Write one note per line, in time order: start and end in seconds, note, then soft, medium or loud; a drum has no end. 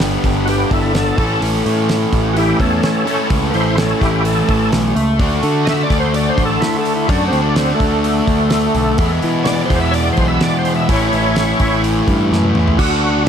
0.00 0.16 G1 medium
0.00 1.16 G2 medium
0.00 1.16 D3 medium
0.00 1.17 G3 medium
0.00 1.17 B3 medium
0.00 1.17 D4 medium
0.00 1.18 G4 medium
0.00 snare loud
0.00 open hi-hat medium
0.24 0.64 G1 medium
0.24 kick medium
0.24 open hi-hat medium
0.46 0.70 B3 medium
0.46 0.48 F#4 medium
0.46 0.71 G4 medium
0.46 open hi-hat medium
0.71 1.10 G1 medium
0.71 0.94 E4 medium
0.71 0.95 A4 medium
0.71 kick medium
0.71 open hi-hat soft
0.95 1.41 A4 loud
0.95 snare medium
0.95 open hi-hat medium
1.17 1.38 A1 medium
1.17 3.04 A2 medium
1.17 3.05 E3 medium
1.17 3.07 A3 medium
1.17 3.06 C#4 loud
1.17 3.07 A4 medium
1.17 kick loud
1.17 open hi-hat medium
1.41 1.61 A1 medium
1.41 open hi-hat medium
1.66 2.05 A2 loud
1.66 open hi-hat medium
1.89 snare loud
1.89 open hi-hat medium
2.13 2.52 A1 medium
2.13 kick medium
2.13 open hi-hat medium
2.34 2.36 F#4 medium
2.34 open hi-hat medium
2.38 2.59 E4 medium
2.38 2.60 G4 loud
2.60 2.80 E2 medium
2.60 2.82 C#4 medium
2.60 2.83 A4 medium
2.60 kick medium
2.60 open hi-hat soft
2.83 3.28 C#4 medium
2.83 3.30 A4 medium
2.83 snare medium
2.83 open hi-hat medium
3.05 4.94 A2 medium
3.05 4.94 E3 loud
3.05 5.20 A3 medium
3.05 4.95 C#4 loud
3.05 5.22 A4 medium
3.05 open hi-hat medium
3.30 3.50 C#2 medium
3.30 kick loud
3.30 open hi-hat medium
3.50 3.93 A1 medium
3.50 3.76 E4 medium
3.50 3.53 B4 medium
3.50 open hi-hat medium
3.54 3.77 C5 loud
3.78 4.00 C#4 medium
3.78 4.01 A4 medium
3.78 snare loud
3.78 open hi-hat medium
4.00 4.41 A1 medium
4.00 4.23 E4 medium
4.00 4.24 G4 medium
4.00 kick medium
4.00 snare soft
4.00 open hi-hat soft
4.25 4.71 A4 loud
4.25 open hi-hat medium
4.49 4.70 A1 medium
4.49 kick medium
4.49 open hi-hat soft
4.72 4.94 B1 medium
4.72 snare medium
4.72 open hi-hat medium
4.96 5.17 C#2 medium
4.96 open hi-hat medium
5.19 5.39 D2 medium
5.19 7.07 D3 medium
5.19 7.08 A3 medium
5.19 7.08 D4 medium
5.19 7.09 F#4 medium
5.19 kick loud
5.19 open hi-hat medium
5.43 5.83 D3 medium
5.43 open hi-hat medium
5.65 5.68 D#5 medium
5.65 snare loud
5.65 open hi-hat medium
5.70 5.84 E5 loud
5.83 5.98 D5 loud
5.90 6.30 D2 medium
5.90 kick medium
5.90 snare soft
5.90 open hi-hat medium
6.00 6.14 C5 medium
6.14 6.30 D5 medium
6.14 open hi-hat medium
6.29 6.45 C5 medium
6.38 6.58 A1 medium
6.38 kick medium
6.38 open hi-hat medium
6.45 6.61 A4 medium
6.61 6.77 E4 loud
6.61 snare medium
6.61 open hi-hat medium
6.78 6.93 A4 medium
6.85 open hi-hat medium
6.95 7.10 E4 medium
7.08 7.29 F#2 medium
7.08 8.97 D3 medium
7.08 8.98 A3 medium
7.08 7.24 D4 medium
7.08 8.98 D4 medium
7.08 8.98 F#4 loud
7.08 kick loud
7.08 open hi-hat medium
7.28 7.42 C4 medium
7.32 7.72 D2 medium
7.32 open hi-hat soft
7.42 7.57 D4 medium
7.56 7.73 C4 medium
7.56 snare loud
7.56 open hi-hat medium
7.75 9.12 A3 loud
7.80 8.20 D2 medium
7.80 kick medium
7.80 open hi-hat medium
8.04 open hi-hat medium
8.27 8.67 D2 medium
8.27 kick medium
8.27 open hi-hat soft
8.50 snare loud
8.50 open hi-hat medium
8.75 8.95 B1 medium
8.75 open hi-hat medium
8.98 10.88 E2 medium
8.98 9.19 E2 loud
8.98 10.88 B2 medium
8.98 10.88 E3 medium
8.98 10.88 G#3 medium
8.98 10.88 B3 loud
8.98 10.89 E4 medium
8.98 kick loud
8.98 open hi-hat medium
9.22 9.63 E3 medium
9.22 open hi-hat medium
9.44 9.47 C#5 medium
9.44 9.62 D5 loud
9.44 snare loud
9.44 open hi-hat medium
9.65 9.79 C5 medium
9.70 10.10 E2 loud
9.70 kick medium
9.70 snare soft
9.70 open hi-hat medium
9.80 9.94 E5 medium
9.91 9.94 C#5 medium
9.91 10.10 D5 loud
9.91 open hi-hat medium
10.13 10.27 C5 loud
10.17 10.38 B1 medium
10.17 kick medium
10.17 open hi-hat soft
10.28 10.42 E5 medium
10.41 10.58 D5 medium
10.41 snare loud
10.41 open hi-hat medium
10.59 10.74 C5 medium
10.65 open hi-hat medium
10.75 10.90 E5 medium
10.89 11.09 A1 loud
10.89 12.78 A2 medium
10.89 12.78 E3 loud
10.89 12.78 A3 medium
10.89 12.79 C#4 loud
10.89 11.81 E4 medium
10.89 12.79 E4 loud
10.89 11.83 C#5 medium
10.89 kick loud
10.89 open hi-hat medium
11.13 11.53 A1 medium
11.13 open hi-hat soft
11.36 snare loud
11.36 open hi-hat medium
11.60 12.00 A1 medium
11.60 kick medium
11.60 open hi-hat medium
11.84 open hi-hat medium
12.08 12.29 G2 medium
12.08 kick medium
12.08 open hi-hat soft
12.31 12.53 F#2 medium
12.31 snare medium
12.43 high tom medium
12.55 12.77 E2 medium
12.55 mid tom medium
12.68 floor tom medium
12.79 13.29 D2 medium
12.79 13.29 D3 medium
12.79 13.29 D4 medium
12.79 13.23 F#4 loud
12.79 13.29 F#4 loud
12.79 13.29 A4 loud
12.79 kick loud
12.79 crash loud